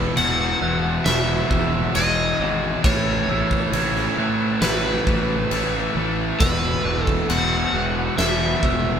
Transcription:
0.00 0.16 E2 medium
0.00 0.16 B2 medium
0.00 0.18 E3 loud
0.00 2.80 G#3 medium
0.00 2.80 B3 medium
0.00 9.00 E4 medium
0.00 0.14 B4 loud
0.00 1.04 B4 medium
0.00 0.17 E6 medium
0.17 0.53 E1 medium
0.17 0.59 E2 medium
0.17 0.60 B2 medium
0.17 0.61 E3 medium
0.17 1.09 F#5 loud
0.17 crash medium
0.60 0.97 E1 medium
0.60 1.05 E2 loud
0.60 1.06 B2 medium
0.60 1.07 E3 loud
0.60 1.51 F#6 medium
1.05 1.41 E1 loud
1.05 1.49 E2 medium
1.05 1.50 B2 loud
1.05 1.52 E3 loud
1.05 2.83 C#5 medium
1.05 1.95 E5 medium
1.05 snare loud
1.05 crash medium
1.50 1.86 E1 medium
1.50 1.94 E2 loud
1.50 1.95 B2 loud
1.50 1.96 E3 loud
1.50 1.95 E6 medium
1.50 kick medium
1.95 2.31 E1 loud
1.95 2.38 E2 medium
1.95 2.39 B2 loud
1.95 2.40 E3 medium
1.95 2.80 D#5 loud
1.95 2.84 G#6 medium
1.95 crash medium
2.39 2.75 G#1 loud
2.39 2.82 E2 medium
2.39 2.82 B2 medium
2.39 2.85 E3 medium
2.84 3.20 A1 loud
2.84 3.28 A2 medium
2.84 3.29 E3 loud
2.84 3.29 A3 medium
2.84 6.37 A3 medium
2.84 6.37 C#4 medium
2.84 9.00 B4 medium
2.84 4.59 C#5 loud
2.84 kick loud
2.84 crash medium
3.28 3.64 A1 medium
3.28 3.73 A2 medium
3.28 3.74 E3 medium
3.28 3.74 A3 medium
3.28 3.73 E6 medium
3.51 kick medium
3.72 4.08 A1 loud
3.72 4.17 A2 medium
3.72 4.18 E3 medium
3.72 4.17 A3 medium
3.72 4.18 G#6 medium
3.72 crash medium
3.96 snare soft
4.17 4.53 A2 medium
4.17 4.61 A2 medium
4.17 4.62 E3 medium
4.17 4.62 A3 loud
4.17 5.07 F#6 medium
4.62 4.97 A1 loud
4.62 5.06 A2 medium
4.62 5.07 E3 loud
4.62 5.07 A3 loud
4.62 5.91 B4 medium
4.62 snare loud
4.62 crash medium
5.07 5.42 A1 medium
5.07 5.51 A2 loud
5.07 5.51 E3 loud
5.07 5.51 A3 medium
5.07 kick medium
5.51 5.87 A1 loud
5.51 5.95 A2 medium
5.51 5.97 E3 medium
5.51 5.96 A3 loud
5.51 crash medium
5.95 6.31 A1 medium
5.95 6.38 A2 medium
5.95 6.40 E3 medium
5.95 6.38 A3 loud
6.40 6.76 E1 loud
6.40 6.83 E2 loud
6.40 6.84 B2 loud
6.40 6.85 E3 loud
6.40 9.00 G#3 medium
6.40 9.00 B3 medium
6.40 7.06 B4 loud
6.40 7.29 E6 medium
6.40 kick loud
6.40 crash medium
6.84 7.20 E1 loud
6.84 7.27 E2 medium
6.84 7.28 B2 medium
6.84 7.29 E3 medium
7.06 7.32 A4 loud
7.06 kick medium
7.28 7.64 E1 loud
7.28 7.72 E2 medium
7.28 7.72 B2 medium
7.28 7.73 E3 loud
7.28 8.18 F#5 loud
7.28 crash medium
7.72 8.08 E1 medium
7.72 8.16 E2 loud
7.72 8.17 B2 medium
7.72 8.18 E3 loud
7.72 8.63 F#6 medium
8.17 8.53 E1 loud
8.17 8.61 E2 medium
8.17 8.62 B2 medium
8.17 8.63 E3 medium
8.17 9.00 E5 loud
8.17 snare loud
8.17 crash medium
8.62 8.98 E1 medium
8.62 9.00 E2 medium
8.62 9.00 B2 loud
8.62 9.00 E3 loud
8.62 9.00 E6 medium
8.62 kick medium

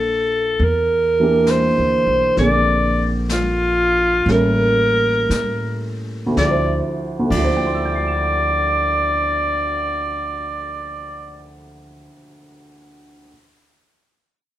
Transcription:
0.00 0.56 A#1 medium
0.00 0.60 F3 soft
0.00 0.60 A#3 soft
0.00 0.60 D4 soft
0.00 0.60 F4 medium
0.00 0.65 A4 medium
0.60 1.73 E2 medium
0.60 brush sweep soft
0.64 1.52 A#4 medium
1.20 2.37 E3 soft
1.20 2.36 A#3 soft
1.20 2.38 D4 soft
1.20 2.38 G4 medium
1.47 2.38 C5 medium
1.47 snare soft
1.47 hi-hat pedal soft
1.78 2.05 D2 medium
2.06 2.35 B1 medium
2.36 4.23 A#1 medium
2.36 4.27 D3 soft
2.36 4.27 A#3 soft
2.36 3.08 D5 medium
2.36 brush sweep soft
2.36 snare soft
2.40 4.29 C4 soft
2.40 4.29 G#4 medium
3.29 4.32 F4 medium
3.29 snare soft
3.29 hi-hat pedal medium
4.26 5.25 A1 medium
4.26 6.38 G3 soft
4.26 6.38 A3 medium
4.26 6.38 A#3 soft
4.26 6.37 C#4 soft
4.26 brush sweep soft
4.26 snare soft
4.31 6.04 A#4 medium
5.30 6.33 A2 medium
5.30 snare soft
5.30 hi-hat pedal soft
6.26 6.77 D2 medium
6.32 6.80 D3 soft
6.37 6.79 D2 medium
6.37 6.83 F3 soft
6.37 6.80 D5 medium
6.37 kick soft
6.37 snare soft
6.44 6.86 E4 soft
6.50 6.89 C5 medium
7.19 11.99 D2 medium
7.26 12.05 D3 soft
7.30 12.06 D2 medium
7.30 12.11 F3 medium
7.30 11.56 D5 medium
7.30 kick soft
7.30 crash soft
7.38 12.17 E4 soft
7.44 12.23 C5 medium
7.49 12.25 E5 soft
7.57 12.30 G5 soft
7.66 12.35 C6 soft
7.75 12.39 E6 soft
7.85 12.44 G6 soft
7.95 12.49 C7 soft
8.08 12.55 E7 soft

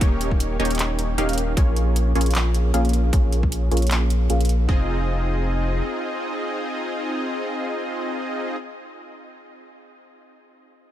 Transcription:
0.01 0.58 D#1 medium
0.01 0.57 A#3 medium
0.01 0.57 C#4 medium
0.01 0.57 D#4 medium
0.01 0.57 G4 medium
0.01 0.57 C#5 loud
0.01 kick loud
0.01 closed hi-hat medium
0.21 closed hi-hat medium
0.31 kick medium
0.40 closed hi-hat medium
0.60 1.16 D#1 medium
0.60 1.16 A#3 medium
0.60 1.16 C#4 medium
0.60 1.16 D#4 medium
0.60 1.16 G4 medium
0.60 1.16 C#5 medium
0.60 closed hi-hat soft
0.65 closed hi-hat medium
0.71 closed hi-hat soft
0.75 closed hi-hat medium
0.79 clap loud
0.79 closed hi-hat medium
0.99 closed hi-hat medium
1.18 1.55 D#1 loud
1.18 1.55 A#3 medium
1.18 1.55 C#4 medium
1.18 1.55 D#4 medium
1.18 1.55 G4 medium
1.18 1.55 F5 medium
1.18 closed hi-hat medium
1.29 closed hi-hat soft
1.33 closed hi-hat medium
1.38 closed hi-hat medium
1.57 2.14 A#1 medium
1.57 2.13 A#3 medium
1.57 2.13 C#4 medium
1.57 2.13 F4 medium
1.57 2.13 G#4 medium
1.57 2.13 C#5 loud
1.57 kick loud
1.57 closed hi-hat medium
1.76 closed hi-hat medium
1.96 closed hi-hat medium
2.15 2.72 A#1 medium
2.15 2.72 A#3 medium
2.15 2.72 C#4 medium
2.15 2.72 F4 medium
2.15 2.72 G#4 medium
2.15 2.72 C#5 medium
2.15 closed hi-hat soft
2.21 closed hi-hat medium
2.26 closed hi-hat soft
2.31 closed hi-hat medium
2.35 clap loud
2.35 closed hi-hat medium
2.54 closed hi-hat medium
2.74 3.11 A#1 medium
2.74 3.11 A#3 medium
2.74 3.11 C#4 medium
2.74 3.11 F4 medium
2.74 3.11 G#4 medium
2.74 3.11 F5 medium
2.74 closed hi-hat medium
2.85 closed hi-hat soft
2.89 closed hi-hat medium
2.93 closed hi-hat medium
3.13 3.70 A#1 medium
3.13 3.69 A#3 medium
3.13 3.69 C#4 medium
3.13 3.69 F4 medium
3.13 3.69 G#4 medium
3.13 3.69 C#5 medium
3.13 kick loud
3.13 closed hi-hat medium
3.33 closed hi-hat medium
3.43 kick medium
3.52 closed hi-hat medium
3.71 4.28 A#1 medium
3.71 4.28 A#3 medium
3.71 4.28 C#4 medium
3.71 4.28 F4 medium
3.71 4.28 G#4 medium
3.71 4.28 C#5 medium
3.71 closed hi-hat soft
3.77 closed hi-hat medium
3.82 closed hi-hat soft
3.87 closed hi-hat medium
3.91 clap loud
3.91 closed hi-hat medium
4.10 closed hi-hat medium
4.30 4.67 A#1 loud
4.30 4.67 A#3 medium
4.30 4.67 C#4 medium
4.30 4.67 F4 medium
4.30 4.67 G#4 medium
4.30 4.67 F5 medium
4.30 closed hi-hat medium
4.41 closed hi-hat soft
4.45 closed hi-hat medium
4.49 closed hi-hat medium
4.69 5.82 F1 medium
4.69 8.56 C4 medium
4.69 8.56 D#4 medium
4.69 8.56 F4 medium
4.69 8.56 G#4 medium
4.69 8.56 D#5 medium
4.69 kick loud

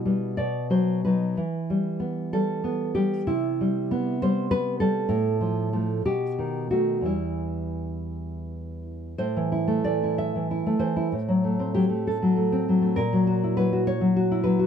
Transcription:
0.00 0.35 B2 soft
0.00 0.34 E4 medium
0.05 0.35 G3 soft
0.05 0.35 B3 soft
0.37 1.35 B2 soft
0.37 0.70 D5 medium
0.70 1.04 F#3 soft
0.70 1.03 C5 medium
1.05 1.35 F#3 soft
1.05 1.35 D#4 soft
1.05 2.29 B4 medium
1.37 3.25 E3 soft
1.70 2.32 G3 soft
2.00 2.63 B3 soft
2.33 2.94 G3 soft
2.33 2.94 A4 medium
2.64 3.27 B3 soft
2.95 3.28 G3 soft
2.95 3.27 G4 medium
3.27 5.05 C3 medium
3.27 4.17 E4 medium
3.61 4.21 G3 soft
3.91 4.50 B3 medium
4.22 4.80 G3 soft
4.22 4.50 C5 medium
4.51 5.11 B3 medium
4.51 4.79 B4 medium
4.80 5.11 G3 soft
4.80 6.01 A4 medium
5.09 6.01 A2 medium
5.41 5.72 F3 medium
5.73 6.02 F3 soft
5.73 6.02 A3 medium
6.05 7.04 B2 medium
6.05 6.69 G4 medium
6.39 6.70 D#3 soft
6.71 7.02 D#3 soft
6.71 7.03 A3 soft
6.71 7.05 F#4 medium
7.01 9.14 E2 soft
7.01 9.15 E3 soft
7.01 9.15 G3 soft
7.06 8.82 E4 medium
9.18 10.66 A2 medium
9.18 9.83 C5 medium
9.37 9.85 E3 soft
9.52 10.02 E4 soft
9.68 10.65 A3 soft
9.84 10.34 E3 soft
9.84 10.16 D5 medium
10.03 10.50 E4 soft
10.18 10.79 E5 medium
10.35 10.78 E3 soft
10.51 10.95 E4 soft
10.66 11.12 A3 soft
10.79 11.12 E3 soft
10.79 11.71 C5 medium
10.96 11.13 E4 medium
11.12 12.95 A2 medium
11.29 11.74 F#3 soft
11.44 11.75 A3 soft
11.59 12.36 C4 soft
11.74 11.89 F#3 soft
11.74 12.05 G4 medium
11.89 12.22 A3 soft
12.07 12.96 A4 medium
12.22 12.67 F#3 soft
12.37 12.81 A3 soft
12.52 12.99 C4 soft
12.69 12.99 F#3 soft
12.82 12.98 A3 medium
12.96 14.67 A#2 medium
12.96 13.54 A#4 medium
13.13 13.56 F#3 soft
13.27 13.71 F#4 medium
13.44 14.30 E4 medium
13.57 14.00 F#3 medium
13.57 13.85 B4 medium
13.73 14.15 F#4 soft
13.87 14.43 C#5 medium
14.01 14.44 F#3 soft
14.16 14.58 F#4 medium
14.31 14.67 E4 medium
14.44 14.67 F#3 soft
14.44 14.67 B4 medium
14.59 14.67 F#4 medium

